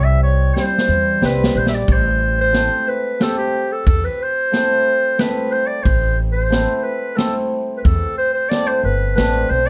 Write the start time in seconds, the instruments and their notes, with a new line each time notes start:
Already playing: upright bass C2, hammered dulcimer G3
0.04 clarinet E5
0.23 clarinet C#5
0.54 hammered dulcimer G3 C4 E4, clarinet C5, snare
0.78 snare
0.88 upright bass E2
1.22 upright bass C2, hammered dulcimer G3 C4 E4, clarinet B4, snare
1.44 snare
1.55 upright bass A#1, clarinet C5
1.66 clarinet E5, snare
1.75 clarinet D5
1.88 upright bass A1, kick, ride
1.92 clarinet C5
2.41 clarinet C5
2.52 hammered dulcimer A3 C4 E4, snare, ride
2.88 clarinet B4
3.19 hammered dulcimer A3 C4 G4, clarinet A4, snare, ride
3.37 clarinet G4
3.72 clarinet A4
3.87 upright bass E2, clarinet A4, kick, ride
4.04 clarinet B4
4.22 clarinet C5
4.52 hammered dulcimer A3 C4 E4, snare, ride
5.18 hammered dulcimer A3 C4 E4, clarinet B4, snare, ride
5.52 clarinet C5
5.67 clarinet D5
5.83 upright bass A1, clarinet C5, kick, ride
6.32 clarinet C5
6.50 hammered dulcimer A3 C4 E4, snare, ride
6.75 clarinet C5
6.83 clarinet B4
7.16 hammered dulcimer A3 C4 E4, clarinet A4, snare, ride
7.77 clarinet B4
7.85 upright bass E2, clarinet A4, kick, ride
8.18 clarinet C5
8.34 clarinet C5
8.49 hammered dulcimer A3 C4 E4, clarinet D5, snare, ride
8.67 clarinet C5
8.83 upright bass G1, clarinet B4
9.16 upright bass A1, hammered dulcimer A3 C4 D4, clarinet B4, snare, ride
9.49 upright bass B1, clarinet C5
9.66 clarinet D5